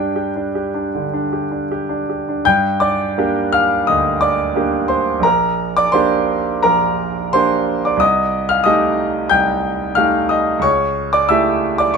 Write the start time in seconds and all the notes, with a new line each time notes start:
Already playing: G2 D4 G4 G5
0.16 G4
0.36 D4
0.55 G4
0.75 D4
0.95 D3
1.14 D4
1.33 G4
1.51 D4
1.71 G4
1.89 D4
2.09 G4
2.29 D4
2.45 G2 G5 G6
2.80 D5 D6
3.18 A#3 D4 G4
3.52 F5 F6
3.87 D2 D#5 D#6
4.21 D5 D6
4.56 A#3 D4 G4
4.88 C5 C6
5.20 A#1 A#5
5.24 A#4
5.77 D5 D6
5.92 A#3 D4 G4 C5 C6
6.63 A#1 A#4 A#5
7.33 A#3 D4 G4 C5 C6
7.85 D5 D6
7.97 C2 D#5 D#6
8.49 F5 F6
8.64 A3 D#4 G4 D#5 D#6
9.30 C2 G5 G6
9.95 A3 D#4 G4 F5 F6
10.29 D#5 D#6
10.59 C#2 C#5 C#6
11.13 D5 D6
11.29 A3 E4 G4 E5 E6
11.78 D5 D6
11.94 C#6